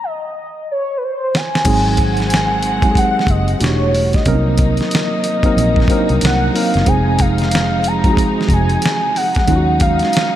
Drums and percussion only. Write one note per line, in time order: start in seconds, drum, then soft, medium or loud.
1.35 snare loud
1.55 snare medium
1.65 kick loud
1.65 closed hi-hat medium
1.65 crash medium
1.97 kick medium
1.97 closed hi-hat medium
2.17 snare soft
2.17 closed hi-hat soft
2.30 snare loud
2.30 closed hi-hat medium
2.63 closed hi-hat medium
2.82 kick loud
2.82 closed hi-hat soft
2.95 kick loud
2.95 closed hi-hat medium
3.19 snare soft
3.27 kick loud
3.27 closed hi-hat medium
3.48 closed hi-hat soft
3.61 snare loud
3.61 closed hi-hat medium
3.95 open hi-hat medium
4.13 kick medium
4.13 snare soft
4.13 closed hi-hat soft
4.26 kick medium
4.26 closed hi-hat medium
4.58 kick medium
4.58 closed hi-hat medium
4.77 snare soft
4.77 closed hi-hat soft
4.91 snare loud
4.91 closed hi-hat medium
5.24 closed hi-hat medium
5.43 kick loud
5.43 closed hi-hat soft
5.58 closed hi-hat medium
5.76 kick medium
5.80 snare soft
5.88 kick loud
5.88 closed hi-hat medium
6.09 closed hi-hat soft
6.21 snare loud
6.21 closed hi-hat medium
6.56 open hi-hat medium
6.74 snare soft
6.74 closed hi-hat soft
6.86 kick medium
6.86 closed hi-hat medium
7.19 kick medium
7.19 closed hi-hat medium
7.38 snare soft
7.38 closed hi-hat soft
7.51 snare loud
7.51 closed hi-hat medium
7.84 closed hi-hat medium
8.04 kick loud
8.04 closed hi-hat soft
8.17 kick medium
8.17 closed hi-hat medium
8.41 snare soft
8.49 kick loud
8.49 closed hi-hat medium
8.69 closed hi-hat soft
8.82 snare loud
8.82 closed hi-hat medium
9.16 open hi-hat medium
9.35 kick medium
9.35 snare soft
9.35 closed hi-hat soft
9.48 kick medium
9.48 closed hi-hat medium
9.80 kick loud
9.80 closed hi-hat medium
9.99 snare soft
9.99 closed hi-hat soft
10.13 snare loud
10.13 closed hi-hat medium